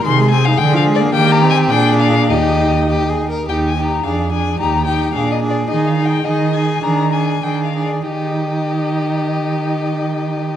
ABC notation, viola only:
X:1
M:2/4
L:1/16
Q:1/4=103
K:Eb
V:1 name="Viola"
E, A, C E D, F, A, B, | B,2 C2 D4 | E6- E z | E2 E2 D2 D2 |
E2 E2 D2 D2 | E2 E2 E2 E2 | D2 D2 D2 D2 | E8- |
E8 |]